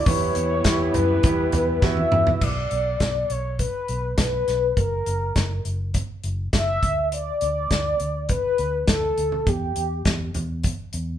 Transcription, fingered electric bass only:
0, 0, Header, 1, 2, 480
1, 0, Start_track
1, 0, Key_signature, 2, "minor"
1, 0, Tempo, 587659
1, 56, Time_signature, 4, 2, 24, 8
1, 9135, End_track
2, 0, Start_track
2, 0, Title_t, "Fingered electric bass"
2, 0, Program_c, 0, 33
2, 53, Note_on_c, 0, 40, 107
2, 251, Note_off_c, 0, 40, 0
2, 294, Note_on_c, 0, 40, 86
2, 492, Note_off_c, 0, 40, 0
2, 531, Note_on_c, 0, 40, 104
2, 730, Note_off_c, 0, 40, 0
2, 771, Note_on_c, 0, 42, 88
2, 970, Note_off_c, 0, 42, 0
2, 1013, Note_on_c, 0, 40, 91
2, 1210, Note_off_c, 0, 40, 0
2, 1252, Note_on_c, 0, 40, 90
2, 1450, Note_off_c, 0, 40, 0
2, 1490, Note_on_c, 0, 40, 88
2, 1689, Note_off_c, 0, 40, 0
2, 1736, Note_on_c, 0, 40, 89
2, 1932, Note_off_c, 0, 40, 0
2, 1971, Note_on_c, 0, 35, 91
2, 2169, Note_off_c, 0, 35, 0
2, 2219, Note_on_c, 0, 35, 82
2, 2414, Note_off_c, 0, 35, 0
2, 2454, Note_on_c, 0, 35, 93
2, 2651, Note_off_c, 0, 35, 0
2, 2696, Note_on_c, 0, 35, 82
2, 2991, Note_off_c, 0, 35, 0
2, 3179, Note_on_c, 0, 35, 88
2, 3374, Note_off_c, 0, 35, 0
2, 3415, Note_on_c, 0, 35, 87
2, 3612, Note_off_c, 0, 35, 0
2, 3661, Note_on_c, 0, 35, 70
2, 3855, Note_off_c, 0, 35, 0
2, 3896, Note_on_c, 0, 30, 83
2, 4092, Note_off_c, 0, 30, 0
2, 4138, Note_on_c, 0, 30, 81
2, 4334, Note_off_c, 0, 30, 0
2, 4379, Note_on_c, 0, 30, 106
2, 4574, Note_off_c, 0, 30, 0
2, 4618, Note_on_c, 0, 30, 71
2, 4912, Note_off_c, 0, 30, 0
2, 5096, Note_on_c, 0, 30, 78
2, 5293, Note_off_c, 0, 30, 0
2, 5335, Note_on_c, 0, 30, 86
2, 5532, Note_off_c, 0, 30, 0
2, 5577, Note_on_c, 0, 38, 75
2, 5970, Note_off_c, 0, 38, 0
2, 6062, Note_on_c, 0, 38, 86
2, 6256, Note_off_c, 0, 38, 0
2, 6295, Note_on_c, 0, 38, 100
2, 6492, Note_off_c, 0, 38, 0
2, 6537, Note_on_c, 0, 38, 72
2, 6831, Note_off_c, 0, 38, 0
2, 7017, Note_on_c, 0, 38, 83
2, 7213, Note_off_c, 0, 38, 0
2, 7254, Note_on_c, 0, 38, 84
2, 7451, Note_off_c, 0, 38, 0
2, 7496, Note_on_c, 0, 38, 70
2, 7692, Note_off_c, 0, 38, 0
2, 7733, Note_on_c, 0, 40, 91
2, 7931, Note_off_c, 0, 40, 0
2, 7978, Note_on_c, 0, 40, 74
2, 8174, Note_off_c, 0, 40, 0
2, 8213, Note_on_c, 0, 40, 91
2, 8411, Note_off_c, 0, 40, 0
2, 8456, Note_on_c, 0, 40, 84
2, 8751, Note_off_c, 0, 40, 0
2, 8935, Note_on_c, 0, 40, 82
2, 9132, Note_off_c, 0, 40, 0
2, 9135, End_track
0, 0, End_of_file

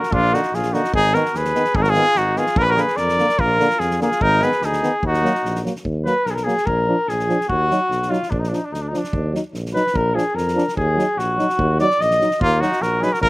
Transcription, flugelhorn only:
0, 0, Header, 1, 2, 480
1, 0, Start_track
1, 0, Key_signature, -6, "minor"
1, 0, Tempo, 409556
1, 122, Time_signature, 2, 2, 24, 8
1, 15579, End_track
2, 0, Start_track
2, 0, Title_t, "Flugelhorn"
2, 0, Program_c, 0, 56
2, 0, Note_on_c, 0, 66, 78
2, 146, Note_on_c, 0, 62, 88
2, 163, Note_off_c, 0, 66, 0
2, 400, Note_on_c, 0, 63, 78
2, 417, Note_off_c, 0, 62, 0
2, 643, Note_on_c, 0, 65, 77
2, 661, Note_off_c, 0, 63, 0
2, 870, Note_on_c, 0, 63, 82
2, 887, Note_off_c, 0, 65, 0
2, 1096, Note_off_c, 0, 63, 0
2, 1114, Note_on_c, 0, 63, 97
2, 1353, Note_on_c, 0, 66, 82
2, 1371, Note_off_c, 0, 63, 0
2, 1587, Note_on_c, 0, 68, 89
2, 1605, Note_off_c, 0, 66, 0
2, 2073, Note_on_c, 0, 63, 87
2, 2091, Note_off_c, 0, 68, 0
2, 2138, Note_on_c, 0, 66, 86
2, 2156, Note_off_c, 0, 63, 0
2, 2236, Note_on_c, 0, 65, 91
2, 2254, Note_off_c, 0, 66, 0
2, 2540, Note_on_c, 0, 63, 85
2, 2557, Note_off_c, 0, 65, 0
2, 2785, Note_on_c, 0, 65, 75
2, 2802, Note_off_c, 0, 63, 0
2, 3017, Note_off_c, 0, 65, 0
2, 3017, Note_on_c, 0, 65, 78
2, 3067, Note_on_c, 0, 68, 70
2, 3084, Note_off_c, 0, 65, 0
2, 3134, Note_on_c, 0, 66, 89
2, 3152, Note_off_c, 0, 68, 0
2, 3239, Note_on_c, 0, 68, 86
2, 3257, Note_off_c, 0, 66, 0
2, 3499, Note_on_c, 0, 70, 96
2, 3517, Note_off_c, 0, 68, 0
2, 3970, Note_on_c, 0, 65, 92
2, 3988, Note_off_c, 0, 70, 0
2, 4468, Note_off_c, 0, 65, 0
2, 4468, Note_on_c, 0, 65, 76
2, 4696, Note_off_c, 0, 65, 0
2, 4711, Note_on_c, 0, 65, 94
2, 4947, Note_on_c, 0, 63, 109
2, 4965, Note_off_c, 0, 65, 0
2, 5175, Note_on_c, 0, 68, 92
2, 5193, Note_off_c, 0, 63, 0
2, 5426, Note_on_c, 0, 63, 82
2, 5444, Note_off_c, 0, 68, 0
2, 5788, Note_off_c, 0, 63, 0
2, 5929, Note_on_c, 0, 63, 94
2, 6581, Note_off_c, 0, 63, 0
2, 7093, Note_on_c, 0, 71, 100
2, 7334, Note_on_c, 0, 70, 93
2, 7351, Note_off_c, 0, 71, 0
2, 7390, Note_on_c, 0, 68, 74
2, 7408, Note_off_c, 0, 70, 0
2, 7436, Note_on_c, 0, 70, 81
2, 7454, Note_off_c, 0, 68, 0
2, 7547, Note_on_c, 0, 68, 99
2, 7565, Note_off_c, 0, 70, 0
2, 7801, Note_on_c, 0, 70, 87
2, 7819, Note_off_c, 0, 68, 0
2, 8306, Note_on_c, 0, 68, 101
2, 8323, Note_off_c, 0, 70, 0
2, 8768, Note_off_c, 0, 68, 0
2, 8775, Note_on_c, 0, 66, 108
2, 9495, Note_on_c, 0, 65, 86
2, 9513, Note_off_c, 0, 66, 0
2, 9731, Note_on_c, 0, 62, 61
2, 9748, Note_off_c, 0, 65, 0
2, 9836, Note_on_c, 0, 63, 63
2, 9854, Note_off_c, 0, 62, 0
2, 9939, Note_on_c, 0, 62, 57
2, 9956, Note_off_c, 0, 63, 0
2, 10017, Note_on_c, 0, 63, 63
2, 10034, Note_off_c, 0, 62, 0
2, 10135, Note_on_c, 0, 62, 63
2, 10153, Note_off_c, 0, 63, 0
2, 10226, Note_on_c, 0, 63, 68
2, 10243, Note_off_c, 0, 62, 0
2, 10329, Note_on_c, 0, 62, 64
2, 10347, Note_off_c, 0, 63, 0
2, 10408, Note_on_c, 0, 63, 54
2, 10426, Note_off_c, 0, 62, 0
2, 10521, Note_on_c, 0, 62, 65
2, 10539, Note_off_c, 0, 63, 0
2, 10946, Note_off_c, 0, 62, 0
2, 11414, Note_on_c, 0, 71, 94
2, 11667, Note_on_c, 0, 70, 89
2, 11685, Note_off_c, 0, 71, 0
2, 11895, Note_on_c, 0, 68, 88
2, 11913, Note_off_c, 0, 70, 0
2, 12133, Note_on_c, 0, 70, 80
2, 12151, Note_off_c, 0, 68, 0
2, 12607, Note_off_c, 0, 70, 0
2, 12614, Note_on_c, 0, 68, 92
2, 13103, Note_on_c, 0, 66, 97
2, 13121, Note_off_c, 0, 68, 0
2, 13817, Note_off_c, 0, 66, 0
2, 13832, Note_on_c, 0, 74, 120
2, 14073, Note_on_c, 0, 75, 111
2, 14090, Note_off_c, 0, 74, 0
2, 14541, Note_off_c, 0, 75, 0
2, 14565, Note_on_c, 0, 58, 90
2, 14792, Note_on_c, 0, 63, 86
2, 14810, Note_off_c, 0, 58, 0
2, 15016, Note_on_c, 0, 66, 88
2, 15033, Note_off_c, 0, 63, 0
2, 15241, Note_on_c, 0, 68, 78
2, 15258, Note_off_c, 0, 66, 0
2, 15387, Note_on_c, 0, 66, 64
2, 15404, Note_off_c, 0, 68, 0
2, 15492, Note_off_c, 0, 66, 0
2, 15499, Note_on_c, 0, 65, 84
2, 15579, Note_off_c, 0, 65, 0
2, 15579, End_track
0, 0, End_of_file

